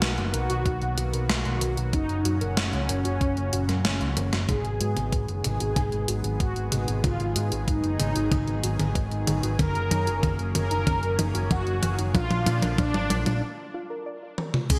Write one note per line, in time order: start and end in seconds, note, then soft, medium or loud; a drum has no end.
0.00 1.89 D#3 medium
0.00 4.45 F#3 medium
0.00 1.89 A#3 medium
0.00 1.91 B3 medium
0.00 0.21 F#4 loud
0.00 4.45 F#4 medium
0.00 0.08 B4 medium
0.00 snare loud
0.00 closed hi-hat soft
0.18 0.32 F#1 medium
0.18 closed hi-hat soft
0.34 0.48 B1 medium
0.34 1.17 F#4 loud
0.34 0.40 A#4 medium
0.34 closed hi-hat medium
0.50 0.64 B1 medium
0.50 0.61 F#4 medium
0.50 closed hi-hat medium
0.66 0.77 D#4 medium
0.66 kick loud
0.66 closed hi-hat soft
0.82 0.96 B1 medium
0.82 closed hi-hat soft
0.98 1.12 B1 medium
0.98 1.08 F#4 loud
0.98 closed hi-hat medium
1.13 1.28 B1 medium
1.13 1.29 A#4 medium
1.13 closed hi-hat soft
1.29 1.44 B1 loud
1.29 1.75 F#4 medium
1.29 1.36 B4 medium
1.29 snare loud
1.29 closed hi-hat soft
1.45 1.60 B1 medium
1.45 closed hi-hat soft
1.61 1.76 B1 medium
1.61 1.68 A#4 medium
1.61 closed hi-hat medium
1.77 1.91 B1 medium
1.77 1.88 F#4 medium
1.77 closed hi-hat medium
1.93 2.07 F#1 loud
1.93 4.46 A#2 medium
1.93 4.46 C#3 medium
1.93 4.46 C#4 medium
1.93 2.04 C#4 medium
1.93 2.39 D#4 medium
1.93 kick loud
1.93 closed hi-hat medium
2.09 2.23 F#1 medium
2.09 closed hi-hat soft
2.25 2.39 F#2 medium
2.25 2.36 F#4 loud
2.25 closed hi-hat medium
2.41 2.55 F#1 medium
2.41 2.56 A#4 medium
2.41 closed hi-hat medium
2.57 2.71 F#1 loud
2.57 4.36 C#4 loud
2.57 2.64 C#5 medium
2.57 snare loud
2.57 closed hi-hat medium
2.73 2.87 C#2 medium
2.73 closed hi-hat soft
2.89 3.03 F#1 medium
2.89 2.96 A#4 medium
2.89 closed hi-hat medium
3.05 3.19 F#1 medium
3.05 3.16 F#4 medium
3.05 closed hi-hat medium
3.21 3.35 F#1 loud
3.21 3.32 C#4 medium
3.21 kick loud
3.21 closed hi-hat soft
3.37 3.51 F#1 medium
3.37 closed hi-hat soft
3.53 3.67 F#1 medium
3.53 3.64 F#4 loud
3.53 closed hi-hat medium
3.69 3.83 F#2 medium
3.69 3.84 A#4 medium
3.69 snare soft
3.69 closed hi-hat medium
3.85 3.99 F#1 loud
3.85 3.91 C#5 medium
3.85 snare loud
3.85 closed hi-hat medium
4.01 4.15 C#2 medium
4.01 closed hi-hat soft
4.17 4.31 F#1 medium
4.17 4.23 A#4 medium
4.17 closed hi-hat medium
4.17 high tom medium
4.33 4.47 F#1 medium
4.33 4.44 F#4 medium
4.33 snare medium
4.33 closed hi-hat medium
4.49 4.63 G#1 loud
4.49 12.11 D#3 medium
4.49 12.11 F#3 medium
4.49 9.55 G#3 medium
4.49 9.55 B3 medium
4.49 4.60 D#4 medium
4.49 5.32 G#4 loud
4.49 12.11 G#4 medium
4.49 kick medium
4.49 closed hi-hat medium
4.49 mid tom soft
4.65 4.79 G#1 medium
4.65 closed hi-hat soft
4.81 4.95 G#2 medium
4.81 4.92 F#4 loud
4.81 closed hi-hat medium
4.97 5.11 G#1 medium
4.97 5.12 G#4 medium
4.97 closed hi-hat medium
4.97 mid tom soft
5.12 5.27 G#1 loud
5.12 5.19 B4 medium
5.12 kick medium
5.12 closed hi-hat medium
5.28 5.43 F#1 medium
5.28 closed hi-hat soft
5.44 5.58 G#1 medium
5.44 5.51 G#4 medium
5.44 6.28 G#4 loud
5.44 closed hi-hat medium
5.44 mid tom soft
5.60 5.74 G#1 medium
5.60 5.71 F#4 medium
5.60 closed hi-hat medium
5.76 5.90 G#1 loud
5.76 5.87 D#4 medium
5.76 kick loud
5.76 closed hi-hat medium
5.76 mid tom medium
5.92 6.06 G#1 medium
5.92 closed hi-hat soft
6.08 6.22 G#1 medium
6.08 6.19 F#4 loud
6.08 closed hi-hat medium
6.24 6.38 G#1 medium
6.24 6.39 G#4 medium
6.24 closed hi-hat medium
6.40 6.54 G#1 loud
6.40 6.86 F#4 medium
6.40 6.47 B4 medium
6.40 kick medium
6.40 closed hi-hat medium
6.56 6.70 G#1 medium
6.56 closed hi-hat soft
6.72 6.86 G#1 medium
6.72 6.79 G#4 medium
6.72 closed hi-hat medium
6.72 mid tom medium
6.88 7.02 G#1 medium
6.88 6.99 F#4 medium
6.88 closed hi-hat medium
7.04 7.18 G#1 loud
7.04 7.15 D#4 medium
7.04 7.50 F4 medium
7.04 kick loud
7.04 closed hi-hat medium
7.04 mid tom medium
7.20 7.34 G#1 medium
7.20 closed hi-hat soft
7.36 7.50 G#2 medium
7.36 7.47 F#4 loud
7.36 closed hi-hat loud
7.52 7.66 G#1 medium
7.52 7.67 G#4 medium
7.52 closed hi-hat medium
7.68 7.82 G#1 loud
7.68 9.47 D#4 loud
7.68 7.74 B4 medium
7.68 kick loud
7.68 closed hi-hat medium
7.84 7.98 F#1 medium
7.84 closed hi-hat soft
8.00 8.14 G#1 medium
8.00 8.06 G#4 medium
8.00 closed hi-hat medium
8.00 mid tom medium
8.16 8.30 G#1 medium
8.16 8.27 F#4 medium
8.16 closed hi-hat medium
8.32 8.46 G#1 loud
8.32 8.43 D#4 medium
8.32 kick loud
8.32 closed hi-hat medium
8.32 mid tom medium
8.48 8.62 G#1 medium
8.48 closed hi-hat soft
8.64 8.78 G#1 medium
8.64 8.74 F#4 loud
8.64 closed hi-hat medium
8.79 8.94 G#1 medium
8.79 8.95 G#4 medium
8.79 closed hi-hat medium
8.79 mid tom medium
8.95 9.09 G#1 loud
8.95 9.02 B4 medium
8.95 kick medium
8.95 closed hi-hat medium
9.11 9.25 G#1 medium
9.11 closed hi-hat soft
9.27 9.41 G#1 medium
9.27 9.34 G#4 medium
9.27 closed hi-hat loud
9.27 mid tom medium
9.43 9.57 G#1 medium
9.43 9.54 F#4 medium
9.43 closed hi-hat medium
9.59 9.73 F#1 loud
9.59 12.12 A#3 medium
9.59 9.70 C#4 medium
9.59 12.12 C#4 medium
9.59 10.42 A#4 loud
9.59 kick loud
9.59 closed hi-hat medium
9.59 mid tom medium
9.75 9.89 F#1 medium
9.75 closed hi-hat soft
9.91 10.05 F#2 medium
9.91 10.02 D#4 loud
9.91 closed hi-hat loud
9.91 mid tom medium
10.07 10.21 F#1 medium
10.07 10.22 F#4 medium
10.07 closed hi-hat medium
10.23 10.37 F#1 loud
10.23 10.30 A#4 medium
10.23 kick loud
10.23 closed hi-hat medium
10.23 mid tom medium
10.39 10.53 F#1 medium
10.39 closed hi-hat soft
10.55 10.69 F#1 medium
10.55 10.62 F#4 medium
10.55 11.38 A#4 loud
10.55 closed hi-hat medium
10.55 mid tom medium
10.71 10.85 F#1 medium
10.71 10.82 D#4 medium
10.71 closed hi-hat medium
10.87 11.01 F#1 loud
10.87 10.98 C#4 medium
10.87 kick loud
10.87 closed hi-hat medium
10.87 mid tom medium
11.03 11.17 F#1 medium
11.03 closed hi-hat soft
11.19 11.33 F#1 medium
11.19 11.30 D#4 loud
11.19 closed hi-hat medium
11.19 mid tom medium
11.35 11.49 F#1 medium
11.35 11.50 F#4 medium
11.35 closed hi-hat medium
11.51 11.65 F#1 loud
11.51 11.97 F#4 medium
11.51 11.57 A#4 medium
11.51 kick medium
11.51 closed hi-hat medium
11.51 mid tom medium
11.67 11.81 F#1 medium
11.67 closed hi-hat soft
11.83 11.97 F#1 medium
11.83 11.89 F#4 medium
11.83 closed hi-hat medium
11.83 mid tom medium
11.99 12.13 F#1 medium
11.99 12.10 D#4 medium
11.99 closed hi-hat medium
12.15 12.29 A#1 loud
12.15 13.41 A#2 medium
12.15 13.41 D3 medium
12.15 13.41 F3 medium
12.15 12.26 D4 medium
12.15 13.41 D4 medium
12.15 12.60 F4 medium
12.15 13.41 F4 medium
12.15 kick medium
12.15 closed hi-hat medium
12.15 mid tom medium
12.30 12.45 A#1 medium
12.30 closed hi-hat soft
12.30 mid tom medium
12.46 12.61 A#2 medium
12.46 12.57 F4 loud
12.46 closed hi-hat medium
12.46 mid tom medium
12.62 12.76 A#1 medium
12.62 12.78 A#4 medium
12.62 closed hi-hat medium
12.62 mid tom medium
12.78 12.92 A#1 loud
12.78 13.42 D4 loud
12.78 12.85 D5 medium
12.78 kick loud
12.78 closed hi-hat medium
12.78 mid tom medium
12.94 13.08 G#1 medium
12.94 closed hi-hat soft
12.94 mid tom medium
13.10 13.24 A#1 medium
13.10 13.17 A#4 medium
13.10 closed hi-hat medium
13.10 mid tom medium
13.26 13.40 A#1 medium
13.26 13.37 F4 medium
13.26 closed hi-hat medium
13.26 mid tom medium
13.42 13.53 D4 medium
13.74 13.85 F4 loud
13.90 14.05 A#4 medium
14.06 14.13 D5 medium
14.38 14.45 A#4 medium
14.38 high tom medium
14.54 14.65 F4 medium
14.54 mid tom medium
14.70 14.79 C#2 loud
14.70 14.79 G#2 medium
14.70 14.79 C#3 medium
14.70 14.79 F#3 medium
14.70 14.79 C#4 medium
14.70 14.79 G#4 loud
14.70 kick loud
14.70 closed hi-hat medium
14.70 crash loud
14.70 shaker soft